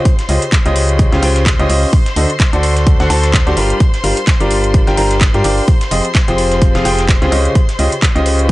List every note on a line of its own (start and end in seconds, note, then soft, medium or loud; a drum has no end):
0.00 8.52 C5 medium
0.00 8.52 C6 medium
0.05 kick loud
0.05 closed hi-hat medium
0.19 snare soft
0.19 closed hi-hat medium
0.29 0.38 C#2 loud
0.29 0.41 C#3 medium
0.29 0.41 C#4 medium
0.29 0.41 F4 medium
0.29 0.41 G4 medium
0.29 0.41 C5 medium
0.29 0.41 D#5 medium
0.29 closed hi-hat medium
0.29 open hi-hat loud
0.42 closed hi-hat soft
0.42 closed hi-hat medium
0.52 kick loud
0.52 snare loud
0.52 clap loud
0.52 closed hi-hat medium
0.66 1.10 C#2 loud
0.66 1.09 C#3 medium
0.66 1.09 C#4 medium
0.66 1.09 F4 medium
0.66 1.09 G4 medium
0.66 1.09 C5 medium
0.66 1.09 D#5 loud
0.66 closed hi-hat medium
0.76 closed hi-hat medium
0.76 open hi-hat loud
0.89 closed hi-hat medium
0.99 kick loud
0.99 closed hi-hat medium
1.12 1.21 C#2 loud
1.12 1.21 C#3 loud
1.12 1.21 C#4 medium
1.12 1.21 F4 medium
1.12 1.21 G4 medium
1.12 1.21 C5 medium
1.12 1.21 F5 loud
1.12 snare medium
1.12 closed hi-hat soft
1.23 1.57 C#2 loud
1.23 1.41 C#3 loud
1.23 1.41 C#4 medium
1.23 1.41 F4 medium
1.23 1.41 G4 medium
1.23 1.41 C5 medium
1.23 1.41 G5 loud
1.23 closed hi-hat medium
1.23 open hi-hat loud
1.36 snare soft
1.36 closed hi-hat medium
1.46 kick loud
1.46 snare loud
1.46 clap loud
1.46 closed hi-hat medium
1.59 1.67 C#2 medium
1.59 1.68 C#3 loud
1.59 1.68 C#4 medium
1.59 1.68 F4 medium
1.59 1.68 G4 medium
1.59 1.68 C5 medium
1.59 1.68 D#5 loud
1.59 closed hi-hat soft
1.69 1.86 C#2 loud
1.69 1.88 C#4 medium
1.69 1.88 F4 medium
1.69 1.88 G4 medium
1.69 1.88 C5 medium
1.69 1.88 D#5 loud
1.69 closed hi-hat medium
1.69 open hi-hat loud
1.83 open hi-hat medium
1.93 kick loud
1.93 closed hi-hat medium
2.06 snare medium
2.06 closed hi-hat medium
2.16 2.26 D2 loud
2.16 2.29 D3 medium
2.16 2.29 D4 medium
2.16 2.29 F#4 medium
2.16 2.29 A4 medium
2.16 2.29 C5 medium
2.16 2.29 D#5 medium
2.16 closed hi-hat medium
2.16 open hi-hat loud
2.30 closed hi-hat medium
2.40 kick loud
2.40 snare loud
2.40 clap loud
2.40 closed hi-hat medium
2.53 2.97 D2 medium
2.53 2.97 D3 medium
2.53 2.97 D4 medium
2.53 2.97 F#4 medium
2.53 2.97 A4 medium
2.53 2.97 C5 medium
2.53 2.97 D5 loud
2.53 closed hi-hat medium
2.63 closed hi-hat medium
2.63 open hi-hat loud
2.76 snare soft
2.76 closed hi-hat medium
2.87 kick loud
2.87 closed hi-hat medium
3.00 3.08 D2 loud
3.00 3.08 D3 loud
3.00 3.08 D4 medium
3.00 3.08 F#4 medium
3.00 3.08 A4 medium
3.00 3.08 C5 medium
3.00 3.08 F#5 loud
3.00 snare medium
3.00 closed hi-hat soft
3.10 3.44 D2 medium
3.10 3.28 D3 loud
3.10 3.28 D4 medium
3.10 3.28 F#4 medium
3.10 3.28 A4 medium
3.10 3.28 C5 medium
3.10 3.28 A5 loud
3.10 snare medium
3.10 closed hi-hat medium
3.10 open hi-hat loud
3.23 snare medium
3.23 closed hi-hat medium
3.33 kick loud
3.33 snare loud
3.33 clap loud
3.33 closed hi-hat medium
3.47 3.55 D2 medium
3.47 3.55 G3 loud
3.47 3.55 D4 medium
3.47 3.55 F#4 medium
3.47 3.55 A4 medium
3.47 3.55 C5 medium
3.47 3.55 D5 loud
3.47 closed hi-hat soft
3.57 3.73 G1 loud
3.57 3.75 G3 loud
3.57 3.75 D4 medium
3.57 3.75 F4 medium
3.57 3.75 G4 medium
3.57 3.75 A#4 medium
3.57 3.75 D5 loud
3.57 closed hi-hat medium
3.57 open hi-hat loud
3.70 closed hi-hat medium
3.80 kick loud
3.80 closed hi-hat medium
3.94 snare soft
3.94 closed hi-hat soft
4.04 4.13 G1 medium
4.04 4.16 G3 medium
4.04 4.16 D4 medium
4.04 4.16 F4 medium
4.04 4.16 G4 medium
4.04 4.16 A#4 medium
4.04 4.16 F5 medium
4.04 closed hi-hat medium
4.04 open hi-hat loud
4.17 closed hi-hat medium
4.17 closed hi-hat soft
4.27 kick loud
4.27 snare loud
4.27 clap loud
4.27 closed hi-hat medium
4.40 4.85 G1 loud
4.40 4.84 G3 medium
4.40 4.84 D4 medium
4.40 4.84 F4 medium
4.40 4.84 G4 medium
4.40 4.84 A#4 medium
4.40 4.84 D5 loud
4.40 closed hi-hat medium
4.51 closed hi-hat medium
4.51 open hi-hat loud
4.64 closed hi-hat medium
4.74 kick loud
4.74 closed hi-hat medium
4.87 4.96 G1 loud
4.87 4.95 G3 medium
4.87 4.96 D4 medium
4.87 4.96 F4 medium
4.87 4.96 G4 medium
4.87 4.95 A#4 medium
4.87 4.96 G5 loud
4.87 snare medium
4.87 closed hi-hat soft
4.97 5.32 G1 loud
4.97 5.16 G3 loud
4.97 5.16 D4 medium
4.97 5.16 F4 medium
4.97 5.16 G4 medium
4.97 5.16 A#4 medium
4.97 5.16 A#5 loud
4.97 closed hi-hat medium
4.97 open hi-hat loud
5.11 snare soft
5.11 closed hi-hat medium
5.21 kick loud
5.21 snare loud
5.21 clap loud
5.21 closed hi-hat medium
5.34 5.42 G2 medium
5.34 5.43 G3 loud
5.34 5.43 D4 medium
5.34 5.43 F4 medium
5.34 5.43 G4 medium
5.34 5.43 A#4 medium
5.34 5.43 D5 loud
5.34 closed hi-hat soft
5.44 5.61 G1 loud
5.44 5.63 D4 medium
5.44 5.63 F4 medium
5.44 5.63 G4 medium
5.44 5.63 A#4 medium
5.44 5.63 D5 loud
5.44 closed hi-hat medium
5.44 open hi-hat loud
5.58 open hi-hat medium
5.68 kick loud
5.68 closed hi-hat medium
5.81 snare medium
5.81 closed hi-hat medium
5.91 6.01 F1 medium
5.91 6.04 F3 medium
5.91 6.04 C4 medium
5.91 6.04 F4 medium
5.91 6.04 G4 medium
5.91 6.04 G#4 medium
5.91 6.04 D#5 medium
5.91 closed hi-hat medium
5.91 open hi-hat loud
6.05 closed hi-hat medium
6.15 kick loud
6.15 snare loud
6.15 clap loud
6.15 closed hi-hat medium
6.28 6.72 F1 loud
6.28 6.72 F3 medium
6.28 6.72 C4 medium
6.28 6.72 F4 medium
6.28 6.72 G4 medium
6.28 6.72 G#4 medium
6.28 6.72 C5 loud
6.28 closed hi-hat soft
6.38 closed hi-hat medium
6.38 open hi-hat loud
6.51 snare soft
6.51 closed hi-hat medium
6.62 kick loud
6.62 closed hi-hat medium
6.75 6.83 F1 loud
6.75 6.83 F3 medium
6.75 6.83 C4 medium
6.75 6.83 F4 medium
6.75 6.83 G4 medium
6.75 6.83 G#4 medium
6.75 6.83 F5 loud
6.75 snare medium
6.75 closed hi-hat soft
6.85 7.19 F1 medium
6.85 7.03 F3 loud
6.85 7.03 C4 medium
6.85 7.03 F4 medium
6.85 7.03 G4 medium
6.85 7.03 G#4 medium
6.85 7.03 G5 loud
6.85 snare medium
6.85 closed hi-hat medium
6.85 open hi-hat loud
6.98 snare medium
6.98 closed hi-hat medium
7.09 kick loud
7.09 snare loud
7.09 clap loud
7.09 closed hi-hat medium
7.22 7.30 C#2 medium
7.22 7.30 C#3 loud
7.22 7.30 C4 medium
7.22 7.30 F4 medium
7.22 7.30 G4 medium
7.22 7.30 G#4 medium
7.22 7.30 C5 loud
7.22 closed hi-hat soft
7.32 7.48 C#2 loud
7.32 7.50 C#3 medium
7.32 7.50 C#4 medium
7.32 7.50 F4 medium
7.32 7.50 G4 medium
7.32 7.50 C5 medium
7.32 7.50 D#5 loud
7.32 closed hi-hat medium
7.32 open hi-hat loud
7.45 closed hi-hat medium
7.55 kick loud
7.55 closed hi-hat medium
7.69 snare soft
7.69 closed hi-hat medium
7.79 7.88 C#2 loud
7.79 7.91 C#3 medium
7.79 7.91 C#4 medium
7.79 7.91 F4 medium
7.79 7.91 G4 medium
7.79 7.91 C5 medium
7.79 7.91 D#5 medium
7.79 closed hi-hat medium
7.79 open hi-hat loud
7.92 closed hi-hat soft
7.92 closed hi-hat medium
8.02 kick loud
8.02 snare loud
8.02 clap loud
8.02 closed hi-hat medium
8.15 8.52 C#2 loud
8.15 8.52 C#3 medium
8.15 8.52 C#4 medium
8.15 8.52 F4 medium
8.15 8.52 G4 medium
8.15 8.52 C5 medium
8.15 8.52 D#5 loud
8.15 closed hi-hat medium
8.26 closed hi-hat medium
8.26 open hi-hat loud
8.39 closed hi-hat medium